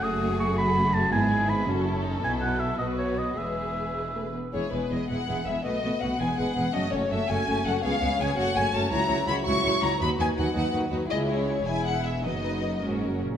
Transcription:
X:1
M:6/8
L:1/8
Q:3/8=109
K:E
V:1 name="Oboe"
d'2 c' b2 a | g2 b z3 | g f e d c d | e4- e z |
z6 | z6 | z6 | z6 |
[K:B] z6 | z6 | z6 | z6 |]
V:2 name="Violin section"
G6 | G3 A3- | A3 B3 | B4- B z |
c B d f2 e | d2 f g f2 | d c e g2 f | ^e2 g f g a |
[K:B] a2 b c'2 a | b g f f z2 | d c2 g f e | d3 z3 |]
V:3 name="Violin section"
F6 | E3 F E D | E3 F3 | G4- G z |
[EG] [EG] [EG] [EG] [EG] [EG] | [FB] [FB] [FB] [GB] [GB] [GB] | [FA] [FA] [FA] [FA] [FA] [FA] | [Gc] [Gc] [Gc] [Fc] [Fc] [Fc] |
[K:B] [Fc] [Fc] [Fc] [Fc] [Fc] [Fc] | [FB] [FB] [FB] [FB] [FB] [FB] | [EG]3 [EG]3 | [FB]3 [FA]2 z |]
V:4 name="Viola section"
A,6 | B,3 C3 | B,3 B,3 | G,3 G, A, B, |
[G,B,] [G,B,] [G,B,] [G,B,] [G,B,] [G,B,] | [A,B,] [A,B,] [A,B,] [G,B,] [G,B,] [G,B,] | [A,C] [A,C] [A,C] [A,C] [A,C] [A,C] | [B,C] [B,C] [B,C] [A,C] [A,C] [A,C] |
[K:B] [F,E] [F,E] [F,E] [F,E] [F,E] [F,E] | [F,D] [F,D] [F,D] [F,D] [F,D] [F,D] | [G,E]3 [G,E]3 | [F,D]3 [F,C]2 z |]
V:5 name="Cello section" clef=bass
F,,6 | G,,3 F,,3 | B,,3 B,,3 | E,,4- E,, z |
E,, E,, E,, E,, E,, E,, | B,, B,, B,, E,, E,, E,, | F,, F,, F,, F,, F,, F,, | C,, C,, C,, F,, F,, F,, |
[K:B] C,, C,, C,, C,, C,, C,, | D,, D,, D,, D,, D,, D,, | C,,3 E,,3 | F,,3 G,, F,, A,, |]
V:6 name="Double bass section" clef=bass
F,,,6 | G,,,3 F,,,3 | B,,,3 B,,,3 | E,,,4- E,,, z |
E,,, E,,, E,,, E,,, E,,, E,,, | B,,, B,,, B,,, E,,, E,,, E,,, | F,,, F,,, F,,, F,,, F,,, F,,, | C,, C,, C,, F,,, F,,, F,,, |
[K:B] C,, C,, C,, C,, C,, C,, | D,, D,, D,, D,, D,, D,, | C,,3 E,,,3 | F,,,3 F,,,2 z |]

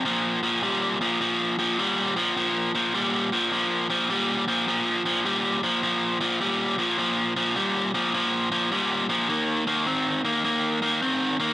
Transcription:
X:1
M:4/4
L:1/8
Q:"Swing" 1/4=104
K:Eb
V:1 name="Overdriven electric guitar" clef=bass
[B,,F,] [B,,F,] [B,,G,] [B,,F,] [B,,F,] [B,,F,] [B,,G,] [B,,F,] | [B,,F,] [B,,F,] [B,,G,] [B,,F,] [B,,F,] [B,,F,] [B,,G,] [B,,F,] | [B,,F,] [B,,F,] [B,,G,] [B,,F,] [B,,F,] [B,,F,] [B,,G,] [B,,F,] | [B,,F,] [B,,F,] [B,,G,] [B,,F,] [B,,F,] [B,,F,] [B,,G,] [B,,F,] |
[E,B,] [E,B,] [E,C] [E,B,] [E,B,] [E,B,] [E,C] [E,B,] |]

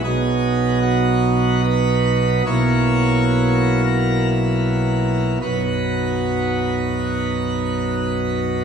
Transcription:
X:1
M:3/4
L:1/8
Q:1/4=61
K:B
V:1 name="Pipe organ"
G2 F2 B2 | c3 A z2 | [B,,,F,,F,B,DFB]6 |]
V:2 name="Pipe organ" clef=bass
[B,,,B,,F,B,D]6 | [B,,,B,,F,A,E]6 | z6 |]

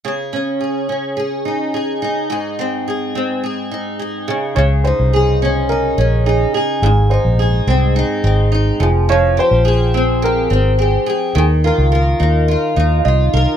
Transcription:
X:1
M:4/4
L:1/16
Q:1/4=106
K:Dblyd
V:1 name="Upright piano"
z16 | z12 z2 A2 | d2 c6 B4 A2 A2 | A2 c8 z4 A2 |
d2 c6 B4 A2 A2 | A2 B8 z3/2 f/2 e4 |]
V:2 name="Steel-string acoustic guitar"
[D,A]2 D2 A2 D2 A2 E2 A2 E2 | [A,,A]2 C2 A2 C2 A2 E2 A2 D,2 | D,2 E2 A2 D2 E2 D2 E2 A2 | A,,2 E2 A2 C2 E2 C2 E2 F,2 |
F,2 G2 A2 C2 G2 C2 G2 A2 | E,2 F2 B2 E2 F2 E2 F2 B2 |]
V:3 name="Fingered electric bass" clef=bass
z16 | z16 | D,,3 C,,6- C,, B,,,4 z2 | A,,,3 B,,,3 C,,3 z A,,,4 F,,,2- |
F,,,3 B,,,6- B,,, A,,,4 z2 | E,,3 D,,3 E,,3 z E,,2 C,,2 C,, z |]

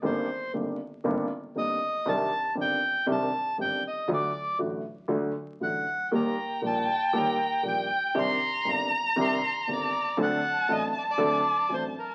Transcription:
X:1
M:4/4
L:1/16
Q:1/4=119
K:Eblyd
V:1 name="Violin"
z16 | z16 | z16 | g16 |
b16 | a16 |]
V:2 name="Bandoneon"
c4 z8 e4 | a4 g4 a4 g2 e2 | d4 z8 ^f4 | b4 a4 b4 g4 |
c'4 b4 c'4 d4 | ^f4 e2 d d4- d c2 B2 |]
V:3 name="Grand piano" clef=bass
[G,,,G,,E,B,CG]2 z2 [G,,,G,,E,B,CG]2 z2 [G,,,G,,E,B,CG]2 z2 [G,,,G,,E,B,CG]2 z2 | [C,,C,E,CDG]2 z2 [G,,,G,,E,CDG]2 z2 [C,,C,E,CDG]2 z2 [G,,,G,,E,CDG]2 z2 | [D,,D,^F,A,^F]2 z2 [A,,,A,,D,F,A,F]2 z2 [D,,D,F,A,F]2 z2 [A,,,A,,D,F,A,F]2 z2 | [E,,E,G,B,G]2 z2 [B,,,B,,E,G,B,G]2 z2 [E,,E,G,B,G]2 z2 [B,,,B,,E,G,B,G]2 z2 |
[C,,C,E,CDG]2 z2 [G,,,G,,E,CDG]2 z2 [C,,C,E,CDG]2 z2 [G,,,G,,E,CDG]2 z2 | [D,,D,^F,CDA]2 z2 [A,,,A,,F,CDA]2 z2 [D,,D,F,CDA]2 z2 [A,,,A,,F,CDA]2 z2 |]
V:4 name="Double bass" clef=bass
G,,,2 z2 G,,,2 z2 G,,,2 z2 G,,,2 z2 | C,,2 z2 G,,,2 z2 C,,2 z2 G,,,2 z2 | D,,2 z2 A,,,2 z2 D,,2 z2 A,,,2 z2 | E,,2 z2 B,,,2 z2 E,,2 z2 B,,,2 z2 |
C,,2 z2 G,,,2 z2 C,,2 z2 G,,,2 z2 | D,,2 z2 A,,,2 z2 D,,2 z2 A,,,2 z2 |]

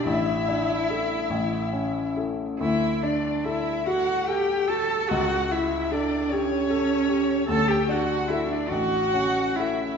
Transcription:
X:1
M:6/8
L:1/16
Q:3/8=48
K:D
V:1 name="Violin"
e8- e2 z2 | e2 d2 e2 f2 g2 a2 | f2 e2 d2 c6 | a g f2 e d f4 e2 |]
V:2 name="Cello"
E8- E2 z2 | E2 D2 E2 F2 G2 A2 | F2 E2 D2 C6 | A G F2 E D F4 E2 |]
V:3 name="Grand piano"
A,,,2 D2 [EA]2 A,,,2 C2 [EA]2 | D,,2 D2 A2 F2 A2 F2 | C,,2 E2 A2 G2 A2 G2 | D,,2 D2 [FA]2 A,,,2 C2 [EA]2 |]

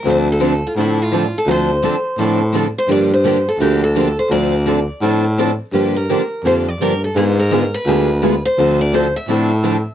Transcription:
X:1
M:4/4
L:1/16
Q:"Swing" 1/4=169
K:Dm
V:1 name="Steel-string acoustic guitar"
c2 A4 F2 E2 F4 A2 | c12 z2 c2 | d2 c4 A2 G2 A4 c2 | d12 z4 |
z2 B6 c2 d2 B2 A2 | ^G2 B4 =B8 c2- | c2 d2 c2 e8- e2 |]
V:2 name="Steel-string acoustic guitar"
[D,F,CDA]2 z2 [D,F,CDA] z3 [D,F,CDA]2 z2 [D,F,CDA] z3 | [D,F,CDA]2 z2 [D,F,CDA] z3 [D,F,CDA]2 z2 [D,F,CDA] z3 | [D,F,B,DG]2 z2 [D,F,B,DG] z3 [D,F,B,DG]2 z2 [D,F,B,DG] z3 | [D,F,CDA]2 z2 [D,F,CDA] z3 [D,F,CDA]2 z2 [D,F,CDA] z3 |
[D,F,B,DG]2 z2 [D,F,B,DG] z3 [D,F,B,DG]2 z2 [D,F,B,DG] z3 | [D,^G,=B,^E^G]2 z2 [D,G,B,EG] z3 [D,G,B,EG]2 z2 [D,G,B,EG] z3 | [D,F,CDA]2 z2 [D,F,CDA] z3 [D,F,CDA]2 z2 [D,F,CDA] z3 |]
V:3 name="Steel-string acoustic guitar"
[D,F,CDA]2 z2 [D,F,CDA] z3 [D,F,CDA]2 z2 [D,F,CDA] z3 | [D,F,CDA]2 z2 [D,F,CDA] z3 [D,F,CDA]2 z2 [D,F,CDA] z3 | [D,F,B,DG]2 z2 [D,F,B,DG] z3 [D,F,B,DG]2 z2 [D,F,B,DG] z3 | [D,F,CDA]2 z2 [D,F,CDA] z3 [D,F,CDA]2 z2 [D,F,CDA] z3 |
[D,F,B,DG]2 z2 [D,F,B,DG] z3 [D,F,B,DG]2 z2 [D,F,B,DG] z3 | [D,^G,=B,^E^G]2 z2 [D,G,B,EG] z3 [D,G,B,EG]2 z2 [D,G,B,EG] z3 | [D,F,CDA]2 z2 [D,F,CDA] z3 [D,F,CDA]2 z2 [D,F,CDA] z3 |]
V:4 name="Baritone saxophone" clef=bass
D,,8 A,,8 | D,,4- D,, z3 A,,8 | G,,8 D,,8 | D,,8 A,,8 |
G,,4- G,, z3 F,,4 G,,4 | ^G,,8 D,,8 | D,,8 A,,8 |]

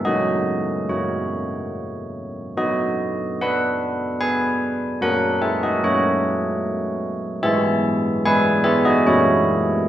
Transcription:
X:1
M:3/4
L:1/16
Q:1/4=73
K:F#mix
V:1 name="Church bells"
[Fd]4 [Fc]6 z2 | [Fd]4 [Bf]4 [Bg]4 | [Af]2 [Ge] [Fd] [Fc]6 z2 | [Ge]4 [Bg]2 [Ge] [Fd] [Ec]4 |]
V:2 name="Church bells"
[F,A,]4 [F,A,]8 | B,4 [B,F]8 | [F,A,F]4 [F,A,]8 | [G,B,E]4 [G,B,E]4 [F,A,]4 |]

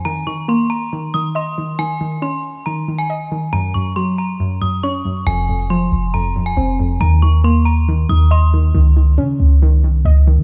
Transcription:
X:1
M:4/4
L:1/16
Q:1/4=138
K:Fphr
V:1 name="Synth bell"
b2 d'2 c'2 b4 e'2 c'4 | a4 c'4 b3 a4- a | b2 d'2 c'2 b2 z2 e'2 d'4 | a4 c'4 b3 a4- a |
b2 d'2 c'2 b4 e'2 c'4 | z16 |]
V:2 name="Synth pluck" clef=bass
E,2 E,2 B,4 E,2 E,2 e2 E,2 | E,2 E,2 D4 E,2 E,2 e2 E,2 | G,,2 G,,2 G,4 G,,2 G,,2 D2 G,,2 | F,,2 F,,2 F,4 F,,2 F,,2 C2 F,,2 |
E,2 E,2 B,4 E,2 E,2 e2 E,2 | E,2 E,2 D4 E,2 E,2 e2 E,2 |]
V:3 name="808-style bass" clef=bass
z16 | z16 | z16 | F,,,6 F,,,4 E,,,2 F,,,4 |
E,,8- E,,2 E,,6 | D,,4 D,2 D,,4 C,,2 D,,3 F, |]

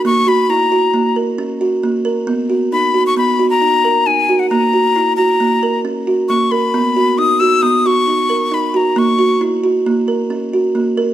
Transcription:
X:1
M:5/4
L:1/16
Q:1/4=135
K:B
V:1 name="Flute"
c'2 b2 a6 z8 z2 | z4 b3 c' b3 a4- a g3 f | a6 a6 z4 c'2 b2- | b4 d'2 e'2 d'2 c'6 b2 a2 |
c'4 z16 |]
V:2 name="Kalimba"
A,2 F2 E2 F2 A,2 A2 C2 F2 A,2 A2 | B,2 F2 D2 F2 B,2 F2 D2 A2 D2 F2 | A,2 F2 E2 F2 A,2 A2 C2 F2 A,2 A2 | B,2 F2 D2 F2 B,2 F2 D2 A2 D2 F2 |
A,2 F2 E2 F2 A,2 A2 C2 F2 A,2 A2 |]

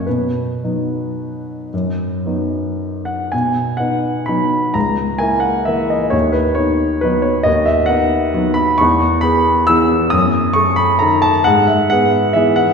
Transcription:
X:1
M:3/4
L:1/8
Q:1/4=132
K:B
V:1 name="Grand piano"
B6- | B4- B f | g2 f2 b2 | a2 g f e d |
c B c2 B c | d e f3 b | c'2 b2 e'2 | d'2 c' b a =a |
f e f2 e f |]
V:2 name="Grand piano"
B,,2 [F,B,D]4 | F,,2 [F,B,D]4 | B,,2 [B,D]2 [F,B,D]2 | C,,2 [A,E]2 [E,A,E]2 |
D,,2 [B,D]2 [F,B,D]2 | D,,2 [B,D]2 [F,B,D]2 | E,,2 [B,G]2 [E,B,G]2 | F,,2 [=A,=A]2 [D,A,A]2 |
G,,2 [B,G]2 [E,B,G]2 |]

